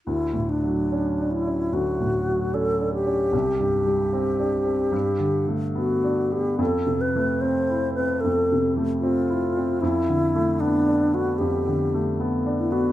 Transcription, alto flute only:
\new Staff \with { instrumentName = "Alto flute" } { \time 4/4 \key g \major \tempo 4 = 75 e'8 d'4 e'8 fis'4 a'8 g'8~ | g'2. \tuplet 3/2 { fis'4 g'8 } | a'8 b'8 \tuplet 3/2 { c''4 b'8 } a'8 r8 f'4 | e'4 \tuplet 3/2 { d'4 fis'8 } g'4 \tuplet 3/2 { r8. e'16 fis'8 } | }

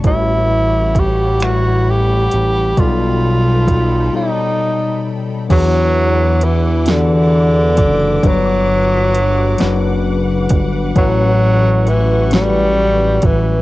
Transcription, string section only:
\new Staff \with { instrumentName = "String section" } { \time 6/8 \key e \dorian \tempo 4. = 44 << { b''2.~ | b''2. | d'''2.~ | d'''2. |
cis'''2. | } \\ { <g cis'' fis''>2. | <dis' a' g''>2. | <e' b' fis''>2. | <b' fis''>2.~ |
<b' fis''>2. | } >> }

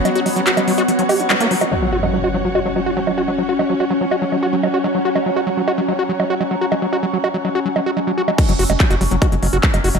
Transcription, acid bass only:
\new Staff \with { instrumentName = "Acid bass" } { \clef bass \time 4/4 \tempo 4 = 144 fis16 fis'16 fis16 fis16 fis'16 fis16 fis16 fis'16 fis16 fis16 g'16 fis16 g16 ais16 fis16 fis16 | fis16 fis16 fis'16 fis16 fis16 fis'16 fis16 fis16 fis'16 fis16 fis16 fis'16 fis16 fis16 fis'16 fis16 | fis16 fis'16 fis16 fis16 fis'16 fis16 fis16 fis'16 fis16 fis16 fis'16 fis16 fis16 fis'16 fis16 fis16 | fis'16 fis16 fis16 fis'16 fis16 fis16 fis'16 fis16 fis16 fis'16 fis16 fis16 fis'16 fis16 fis16 fis'16 |
fis16 fis16 fis'16 fis16 fis16 fis'16 fis16 fis16 fis'16 fis16 fis16 fis'16 fis16 fis16 fis'16 fis16 | fis16 fis16 fis'16 fis16 fis16 fis'16 fis16 fis16 fis'16 fis16 fis16 fis'16 fis16 fis16 fis'16 fis16 | }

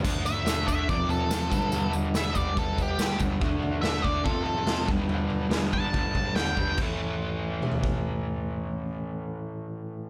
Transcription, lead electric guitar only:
\new Staff \with { instrumentName = "Lead electric guitar" } { \time 4/4 \key g \lydian \tempo 4 = 142 r8 e''4 e''8 d''8 a'4.~ | a'8 r8 e''8 d''8 a'8 g'4 r8 | r4 e''8 d''8 a'8 a'4 r8 | r4. a''4. g''4 |
r1 | r1 | }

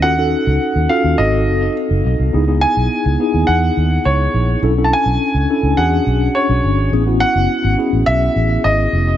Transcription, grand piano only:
\new Staff \with { instrumentName = "Grand piano" } { \time 4/4 \key cis \minor \tempo 4 = 104 fis''4. f''8 dis''4 r4 | r8 gis''4. fis''4 cis''4 | r16. a''32 gis''4. fis''4 cis''4 | r8 fis''4 r8 e''4 dis''4 | }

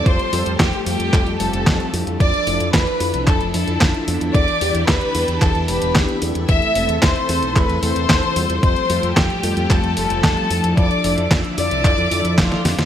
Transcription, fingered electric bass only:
\new Staff \with { instrumentName = "Fingered electric bass" } { \clef bass \time 4/4 \key f \lydian \tempo 4 = 112 f,16 r16 f,16 f,16 f,16 r16 f,16 f,16 f,16 f,16 f,,16 f,,16 f,16 r16 f,16 f,16 | f,16 r16 f,,16 f,16 f,16 r16 f,16 c,16 f,16 f,,16 f,16 f,16 f,16 r16 f,16 f,16 | e,16 r16 e,16 e,16 e,16 r16 e,16 e,16 e,16 e,16 e,,16 e,,16 e,16 r16 e,16 e,16 | e,16 r16 e,,16 e,16 e,16 r16 e,16 b,,16 e,16 e,16 e,16 e,16 e,16 r16 e,16 e,16 |
f,16 r16 f,16 f,16 f,16 r16 f,16 f,16 f,16 f,16 f,,16 f,,16 f,16 r16 f,16 f,16 | f,16 r16 f,,16 f,16 f,16 r16 f,16 c,16 f,16 f,16 f,16 f,16 f,,16 r16 f,16 f,16 | }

